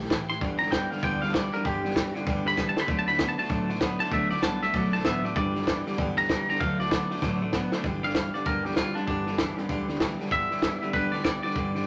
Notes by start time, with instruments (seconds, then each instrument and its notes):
0.00 steel-string acoustic guitar A3 E4
0.04 snare
0.10 upright bass A1, steel-string acoustic guitar E3 A3 E4 G4, kick, snare, hi-hat pedal
0.30 steel-string acoustic guitar A3 E4 G4, clean electric guitar C6, snare
0.41 upright bass G1, steel-string acoustic guitar G2 D3 E3 G3 B3 G4, clean electric guitar G2 D3, kick, snare
0.59 clean electric guitar G2 D3 A#5, steel-string acoustic guitar G3 B3 G4, snare
0.63 steel-string acoustic guitar E3, snare
0.71 clean electric guitar G2 E3 G5, steel-string acoustic guitar E3 G3 B3 G4, kick, snare, hi-hat pedal
0.91 clean electric guitar G2 D3 F5, steel-string acoustic guitar E3 G3 B3 G4, snare
0.97 snare
1.03 upright bass D2, clean electric guitar G2 D3 G5, steel-string acoustic guitar G2 D3 E3 G3 B3 G4, kick, snare
1.22 clean electric guitar G2 D3 F5, steel-string acoustic guitar E3 G3 B3 G4, snare
1.28 snare
1.33 clean electric guitar G2 E3 D5, steel-string acoustic guitar E3 G3 B3 G4, kick, snare, hi-hat pedal
1.53 clean electric guitar G2 D3 A#4, steel-string acoustic guitar E3 G3 B3 G4, snare
1.65 upright bass G1, steel-string acoustic guitar G2 D3 E3 G3 B3 G4, clean electric guitar G2 D3 G4, kick, snare
1.83 clean electric guitar G2 D3, steel-string acoustic guitar E3 G3 B3 G4, snare
1.90 snare
1.95 clean electric guitar G2 E3, steel-string acoustic guitar E3 G3 B3 G4, kick, snare, hi-hat pedal
2.13 clean electric guitar G2 D3, steel-string acoustic guitar E3 G3 B3 G4, snare
2.26 upright bass D2, clean electric guitar G2 D3, steel-string acoustic guitar G2 D3 E3 G3 B3 G4, kick, snare
2.45 clean electric guitar G2 D3 B5, steel-string acoustic guitar G3 B3 G4, snare
2.52 snare
2.57 clean electric guitar G2 E3, steel-string acoustic guitar E3 G3 B3 G4, kick, snare, hi-hat pedal
2.69 clean electric guitar A5
2.76 clean electric guitar G2 D3 B5, steel-string acoustic guitar G3 B3 G4, snare
2.88 upright bass D2, clean electric guitar D3 A3, steel-string acoustic guitar D3 F#3 A3 B3 F#4, kick, snare
2.99 clean electric guitar A5
3.06 clean electric guitar D3 A3 B5, steel-string acoustic guitar A3 B3 F#4, snare
3.13 snare
3.18 clean electric guitar D3 B3, steel-string acoustic guitar F#3 A3 B3 F#4, kick, snare, hi-hat pedal
3.29 clean electric guitar A5
3.37 clean electric guitar D3 A3 A5, steel-string acoustic guitar A3 B3 F#4, snare
3.44 snare
3.48 upright bass A1, steel-string acoustic guitar D3 F#3 A3 B3 F#4, clean electric guitar D3 A3, kick, snare
3.68 clean electric guitar D3 A3, steel-string acoustic guitar A3 B3 F#4, snare
3.75 snare
3.80 clean electric guitar D3 B3, steel-string acoustic guitar F#3 A3 B3 F#4, kick, snare, hi-hat pedal
4.00 clean electric guitar D3 A3 A5, steel-string acoustic guitar A3 B3 F#4, snare
4.05 snare
4.11 upright bass D2, steel-string acoustic guitar D3 F#3 A3 B3 F#4, clean electric guitar D3 A3 E5, kick, snare
4.30 clean electric guitar D3 A3 D5, steel-string acoustic guitar A3 B3 F#4, snare
4.37 snare
4.42 upright bass C2, clean electric guitar D3 B3 A5, steel-string acoustic guitar F#3 A3 B3 F#4, kick, snare, hi-hat pedal
4.61 clean electric guitar D3 A3 E5, steel-string acoustic guitar A3 B3 F#4, snare
4.73 upright bass B1, steel-string acoustic guitar D3 F#3 A3 B3 F#4, clean electric guitar D3 A3 D5, kick, snare
4.92 clean electric guitar D3 A3 A5, steel-string acoustic guitar A3 B3 F#4, snare
4.99 snare
5.04 upright bass A1, clean electric guitar D3 B3 E5, steel-string acoustic guitar F#3 A3 B3 F#4, kick, snare, hi-hat pedal
5.24 clean electric guitar D3 A3 D5, steel-string acoustic guitar A3 B3 F#4, snare
5.35 upright bass G1, steel-string acoustic guitar G2 D3 E3 G3 B3 G4, clean electric guitar G2 D3 D5, kick, snare
5.54 clean electric guitar G2 D3, steel-string acoustic guitar E3 G3 B3 G4, snare
5.61 snare
5.66 clean electric guitar G2 E3, steel-string acoustic guitar E3 G3 B3 G4, kick, snare, hi-hat pedal
5.85 clean electric guitar G2 D3, steel-string acoustic guitar E3 G3 B3 G4, snare
5.92 snare
5.97 upright bass D2, steel-string acoustic guitar G2 D3 E3 G3 B3 G4, clean electric guitar G2 D3, kick, snare
6.17 clean electric guitar G2 D3 A#5, steel-string acoustic guitar E3 G3 B3 G4, snare
6.24 snare
6.29 clean electric guitar G2 E3, steel-string acoustic guitar E3 G3 B3 G4, kick, snare, hi-hat pedal
6.47 clean electric guitar G2 D3 A#5, steel-string acoustic guitar E3 G3 B3 G4, snare
6.55 snare
6.60 upright bass D2, clean electric guitar D3 A3 F5, steel-string acoustic guitar D3 F#3 A3 B3 F#4, kick, snare
6.79 clean electric guitar D3 A3 D5, steel-string acoustic guitar A3 B3 F#4, snare
6.86 snare
6.90 clean electric guitar D3 B3, steel-string acoustic guitar F#3 A3 B3 F#4, kick, snare, hi-hat pedal
7.10 clean electric guitar D3 A3, steel-string acoustic guitar A3 B3 F#4, snare
7.16 snare
7.22 upright bass A1, steel-string acoustic guitar D3 F#3 A3 B3 F#4, clean electric guitar D3 A3, kick, snare
7.41 clean electric guitar D3 A3, steel-string acoustic guitar A3 B3 F#4
7.53 clean electric guitar D3 B3, steel-string acoustic guitar F#3 A3 B3 F#4, kick, snare, hi-hat pedal
7.72 clean electric guitar D3 A3, steel-string acoustic guitar A3 B3 F#4, snare
7.84 upright bass G1, clean electric guitar G2 D3, steel-string acoustic guitar G2 D3 E3 G3 B3 G4, kick, snare
8.03 clean electric guitar G2 D3 F5, steel-string acoustic guitar E3 G3 B3 G4, snare
8.09 snare
8.15 clean electric guitar G2 E3, steel-string acoustic guitar E3 G3 B3 G4, kick, snare, hi-hat pedal
8.34 clean electric guitar G2 D3 D5, steel-string acoustic guitar E3 G3 B3 G4, snare
8.46 upright bass D2, clean electric guitar G2 D3 A#4, steel-string acoustic guitar G2 D3 E3 G3 B3 G4, kick, snare
8.65 clean electric guitar G2 D3 G4, steel-string acoustic guitar E3 G3 B3 G4, snare
8.71 snare
8.76 clean electric guitar G2 E3 F4, steel-string acoustic guitar E3 G3 B3, kick, snare, hi-hat pedal
8.80 steel-string acoustic guitar G4
8.95 clean electric guitar G2 D3 D4, steel-string acoustic guitar G3 B3 G4, snare
8.99 steel-string acoustic guitar E3
9.07 upright bass G1, steel-string acoustic guitar G2 D3 E3 G3 B3 G4, clean electric guitar G2 D3 D4, kick, snare
9.27 clean electric guitar G2 D3, steel-string acoustic guitar E3 G3 B3 G4, snare
9.33 snare
9.38 clean electric guitar G2 E3, steel-string acoustic guitar E3 G3 B3 G4, kick, snare, hi-hat pedal
9.57 clean electric guitar G2 D3, steel-string acoustic guitar E3 G3 B3 G4, snare
9.69 upright bass D2, clean electric guitar G2 D3, steel-string acoustic guitar G2 D3 E3 G3 B3 G4, kick, snare
9.88 clean electric guitar G2 D3, steel-string acoustic guitar E3 G3 B3 G4, snare
9.95 snare
9.99 clean electric guitar G2 E3, steel-string acoustic guitar E3 G3 B3 G4, kick, snare, hi-hat pedal
10.19 clean electric guitar G2 D3, steel-string acoustic guitar E3 G3 B3 G4, snare
10.26 snare
10.31 upright bass G1, steel-string acoustic guitar G2 D3 E3 G3 B3 G4, clean electric guitar G2 D3 E5, kick, snare
10.49 clean electric guitar G2 D3, steel-string acoustic guitar E3 G3 B3 G4, snare
10.57 snare
10.62 clean electric guitar G2 E3, steel-string acoustic guitar E3 G3 B3 G4, kick, snare, hi-hat pedal
10.81 clean electric guitar G2 D3, steel-string acoustic guitar E3 G3 B3 G4, snare
10.93 upright bass D2, steel-string acoustic guitar G2 D3 E3 G3 B3 G4, clean electric guitar G2 D3 B4, kick, snare
11.12 clean electric guitar G2 D3 D5, steel-string acoustic guitar E3 G3 B3 G4, snare
11.19 snare
11.24 clean electric guitar G2 E3 D5, steel-string acoustic guitar E3 G3 B3 G4, kick, snare, hi-hat pedal
11.43 clean electric guitar G2 D3 D5, steel-string acoustic guitar E3 G3 B3 G4, snare
11.50 snare
11.56 upright bass G1, steel-string acoustic guitar G2 D3 E3 G3 B3 G4, clean electric guitar G2 D3, kick, snare
11.75 clean electric guitar G2 D3, steel-string acoustic guitar E3 G3 B3 G4, snare
11.81 snare